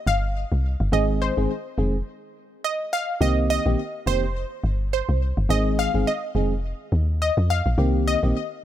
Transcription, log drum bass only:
0.07 G1
0.52 C2
0.80 G1
0.92 G#1
1.37 G1
1.78 F1
3.21 C2
3.66 A#1
4.06 F1
4.64 G1
5.09 C2
5.37 G1
5.49 G#1
5.94 G1
6.35 F1
6.92 D#2
7.37 F2
7.66 A#1
7.78 C2
8.23 A#1

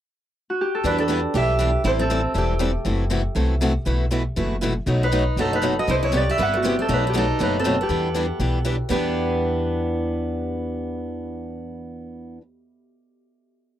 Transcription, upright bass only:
0.84 E2
1.34 B1
1.84 A1
2.35 E1
2.85 F#1
3.35 C2
3.86 B1
4.37 F#1
4.86 B1
5.36 F#1
5.88 C2
6.39 G1
6.89 B1
7.40 F#1
7.89 E2
8.39 B1
8.90 E2

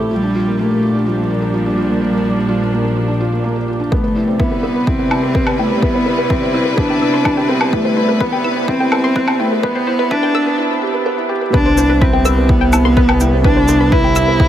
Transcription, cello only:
0.11 G3
0.59 A3
1.06 G3
3.92 A3
4.39 B3
4.87 C4
5.59 A3
5.83 B3
6.30 C4
6.78 D4
7.48 C4
7.72 A3
8.20 B3
8.68 C4
9.40 A3
9.63 B3
10.11 D4
11.54 D4
12.01 C4
12.49 B3
13.44 D4
13.92 E4

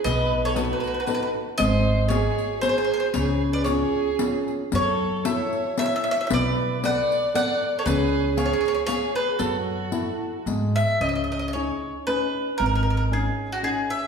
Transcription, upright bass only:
0.05 B1
1.60 G#1
3.15 C#2
4.73 F#2
6.31 B1
7.86 C#2
9.40 F#2
10.46 G#2
11.01 C#2
12.60 G#1

